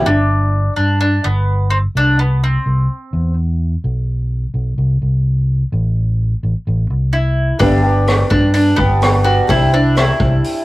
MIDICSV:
0, 0, Header, 1, 5, 480
1, 0, Start_track
1, 0, Key_signature, 1, "major"
1, 0, Tempo, 471328
1, 62, Time_signature, 4, 2, 24, 8
1, 10843, End_track
2, 0, Start_track
2, 0, Title_t, "Mandolin"
2, 0, Program_c, 0, 25
2, 62, Note_on_c, 0, 62, 100
2, 741, Note_off_c, 0, 62, 0
2, 777, Note_on_c, 0, 62, 75
2, 1012, Note_off_c, 0, 62, 0
2, 1024, Note_on_c, 0, 62, 93
2, 1265, Note_on_c, 0, 59, 81
2, 1270, Note_off_c, 0, 62, 0
2, 1731, Note_off_c, 0, 59, 0
2, 1735, Note_on_c, 0, 60, 74
2, 1801, Note_off_c, 0, 60, 0
2, 2005, Note_on_c, 0, 62, 96
2, 2219, Note_off_c, 0, 62, 0
2, 2230, Note_on_c, 0, 59, 72
2, 2474, Note_off_c, 0, 59, 0
2, 2481, Note_on_c, 0, 60, 70
2, 3393, Note_off_c, 0, 60, 0
2, 7259, Note_on_c, 0, 64, 76
2, 7708, Note_off_c, 0, 64, 0
2, 7734, Note_on_c, 0, 62, 84
2, 8442, Note_off_c, 0, 62, 0
2, 8454, Note_on_c, 0, 62, 75
2, 8683, Note_off_c, 0, 62, 0
2, 8696, Note_on_c, 0, 62, 86
2, 8925, Note_on_c, 0, 59, 89
2, 8947, Note_off_c, 0, 62, 0
2, 9414, Note_on_c, 0, 66, 88
2, 9429, Note_off_c, 0, 59, 0
2, 9642, Note_off_c, 0, 66, 0
2, 9673, Note_on_c, 0, 64, 95
2, 9892, Note_off_c, 0, 64, 0
2, 9915, Note_on_c, 0, 62, 85
2, 10155, Note_off_c, 0, 62, 0
2, 10160, Note_on_c, 0, 64, 81
2, 10843, Note_off_c, 0, 64, 0
2, 10843, End_track
3, 0, Start_track
3, 0, Title_t, "Twelve-string acoustic guitar"
3, 0, Program_c, 1, 25
3, 7728, Note_on_c, 1, 43, 76
3, 7733, Note_on_c, 1, 50, 78
3, 7735, Note_on_c, 1, 55, 72
3, 7740, Note_on_c, 1, 59, 82
3, 7742, Note_on_c, 1, 62, 75
3, 7748, Note_on_c, 1, 67, 89
3, 7953, Note_off_c, 1, 67, 0
3, 7965, Note_on_c, 1, 67, 45
3, 7966, Note_off_c, 1, 62, 0
3, 7977, Note_off_c, 1, 43, 0
3, 7978, Note_on_c, 1, 62, 41
3, 7979, Note_off_c, 1, 50, 0
3, 7979, Note_off_c, 1, 59, 0
3, 7980, Note_off_c, 1, 55, 0
3, 7991, Note_on_c, 1, 59, 41
3, 8006, Note_on_c, 1, 55, 39
3, 8196, Note_off_c, 1, 55, 0
3, 8209, Note_on_c, 1, 55, 49
3, 8211, Note_off_c, 1, 59, 0
3, 8215, Note_off_c, 1, 67, 0
3, 8221, Note_off_c, 1, 62, 0
3, 8223, Note_on_c, 1, 59, 52
3, 8234, Note_on_c, 1, 62, 55
3, 8240, Note_on_c, 1, 67, 60
3, 8935, Note_off_c, 1, 67, 0
3, 8939, Note_on_c, 1, 67, 46
3, 8943, Note_off_c, 1, 59, 0
3, 8943, Note_off_c, 1, 62, 0
3, 8947, Note_on_c, 1, 62, 45
3, 8956, Note_on_c, 1, 59, 43
3, 8965, Note_off_c, 1, 55, 0
3, 8969, Note_on_c, 1, 55, 43
3, 9161, Note_off_c, 1, 55, 0
3, 9173, Note_on_c, 1, 55, 60
3, 9181, Note_off_c, 1, 67, 0
3, 9184, Note_off_c, 1, 59, 0
3, 9185, Note_off_c, 1, 62, 0
3, 9196, Note_on_c, 1, 59, 64
3, 9203, Note_on_c, 1, 62, 69
3, 9213, Note_on_c, 1, 67, 68
3, 9394, Note_off_c, 1, 67, 0
3, 9406, Note_off_c, 1, 59, 0
3, 9406, Note_off_c, 1, 62, 0
3, 9406, Note_on_c, 1, 67, 64
3, 9410, Note_off_c, 1, 55, 0
3, 9418, Note_on_c, 1, 59, 49
3, 9418, Note_on_c, 1, 62, 67
3, 9421, Note_on_c, 1, 50, 52
3, 9422, Note_on_c, 1, 55, 56
3, 9428, Note_on_c, 1, 43, 52
3, 9643, Note_off_c, 1, 50, 0
3, 9643, Note_off_c, 1, 55, 0
3, 9647, Note_on_c, 1, 48, 73
3, 9655, Note_off_c, 1, 67, 0
3, 9655, Note_on_c, 1, 55, 78
3, 9657, Note_off_c, 1, 62, 0
3, 9658, Note_off_c, 1, 59, 0
3, 9662, Note_on_c, 1, 60, 70
3, 9665, Note_off_c, 1, 43, 0
3, 9668, Note_on_c, 1, 64, 83
3, 9669, Note_on_c, 1, 62, 79
3, 9881, Note_off_c, 1, 64, 0
3, 9894, Note_on_c, 1, 64, 49
3, 9895, Note_off_c, 1, 48, 0
3, 9896, Note_off_c, 1, 62, 0
3, 9899, Note_off_c, 1, 55, 0
3, 9903, Note_off_c, 1, 60, 0
3, 9908, Note_on_c, 1, 62, 43
3, 9918, Note_on_c, 1, 60, 32
3, 10132, Note_off_c, 1, 60, 0
3, 10134, Note_on_c, 1, 55, 53
3, 10138, Note_off_c, 1, 64, 0
3, 10141, Note_off_c, 1, 62, 0
3, 10144, Note_on_c, 1, 60, 57
3, 10154, Note_on_c, 1, 62, 52
3, 10168, Note_on_c, 1, 64, 55
3, 10843, Note_off_c, 1, 55, 0
3, 10843, Note_off_c, 1, 60, 0
3, 10843, Note_off_c, 1, 62, 0
3, 10843, Note_off_c, 1, 64, 0
3, 10843, End_track
4, 0, Start_track
4, 0, Title_t, "Fingered electric bass"
4, 0, Program_c, 2, 33
4, 61, Note_on_c, 2, 31, 87
4, 684, Note_off_c, 2, 31, 0
4, 786, Note_on_c, 2, 43, 70
4, 1200, Note_off_c, 2, 43, 0
4, 1269, Note_on_c, 2, 31, 70
4, 1889, Note_off_c, 2, 31, 0
4, 1989, Note_on_c, 2, 36, 81
4, 2610, Note_off_c, 2, 36, 0
4, 2708, Note_on_c, 2, 36, 77
4, 2914, Note_off_c, 2, 36, 0
4, 3187, Note_on_c, 2, 40, 99
4, 3809, Note_off_c, 2, 40, 0
4, 3911, Note_on_c, 2, 35, 88
4, 4532, Note_off_c, 2, 35, 0
4, 4623, Note_on_c, 2, 35, 74
4, 4831, Note_off_c, 2, 35, 0
4, 4866, Note_on_c, 2, 36, 99
4, 5073, Note_off_c, 2, 36, 0
4, 5110, Note_on_c, 2, 36, 79
4, 5731, Note_off_c, 2, 36, 0
4, 5829, Note_on_c, 2, 33, 94
4, 6450, Note_off_c, 2, 33, 0
4, 6550, Note_on_c, 2, 33, 80
4, 6652, Note_off_c, 2, 33, 0
4, 6794, Note_on_c, 2, 33, 97
4, 6998, Note_off_c, 2, 33, 0
4, 7028, Note_on_c, 2, 36, 85
4, 7649, Note_off_c, 2, 36, 0
4, 7742, Note_on_c, 2, 31, 91
4, 8365, Note_off_c, 2, 31, 0
4, 8464, Note_on_c, 2, 43, 73
4, 8879, Note_off_c, 2, 43, 0
4, 8936, Note_on_c, 2, 31, 81
4, 9561, Note_off_c, 2, 31, 0
4, 9662, Note_on_c, 2, 36, 86
4, 10285, Note_off_c, 2, 36, 0
4, 10388, Note_on_c, 2, 36, 80
4, 10593, Note_off_c, 2, 36, 0
4, 10843, End_track
5, 0, Start_track
5, 0, Title_t, "Drums"
5, 7742, Note_on_c, 9, 36, 91
5, 7742, Note_on_c, 9, 46, 43
5, 7844, Note_off_c, 9, 36, 0
5, 7844, Note_off_c, 9, 46, 0
5, 8222, Note_on_c, 9, 46, 42
5, 8231, Note_on_c, 9, 37, 93
5, 8324, Note_off_c, 9, 46, 0
5, 8333, Note_off_c, 9, 37, 0
5, 8462, Note_on_c, 9, 36, 86
5, 8564, Note_off_c, 9, 36, 0
5, 8705, Note_on_c, 9, 46, 50
5, 8807, Note_off_c, 9, 46, 0
5, 8941, Note_on_c, 9, 36, 69
5, 9043, Note_off_c, 9, 36, 0
5, 9184, Note_on_c, 9, 46, 47
5, 9193, Note_on_c, 9, 37, 98
5, 9285, Note_off_c, 9, 46, 0
5, 9295, Note_off_c, 9, 37, 0
5, 9665, Note_on_c, 9, 36, 94
5, 9665, Note_on_c, 9, 46, 39
5, 9766, Note_off_c, 9, 36, 0
5, 9767, Note_off_c, 9, 46, 0
5, 10147, Note_on_c, 9, 46, 41
5, 10156, Note_on_c, 9, 37, 95
5, 10249, Note_off_c, 9, 46, 0
5, 10258, Note_off_c, 9, 37, 0
5, 10388, Note_on_c, 9, 36, 87
5, 10490, Note_off_c, 9, 36, 0
5, 10635, Note_on_c, 9, 46, 48
5, 10737, Note_off_c, 9, 46, 0
5, 10843, End_track
0, 0, End_of_file